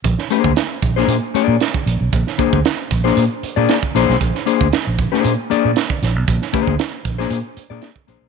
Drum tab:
HH |x-x-x-x-x-x-x-x-|x-x-x-x-x-x-x-x-|x-x-x-x-x-x-x-x-|x-x-x-x-x-x-x-x-|
SD |-o--o--o----o---|-o--o--o----o-oo|-o--o--o----o-o-|-o--o--o----o-o-|
BD |o--o--o------o--|o-oo--o------o--|o--o--o------o--|o-oo--o------o--|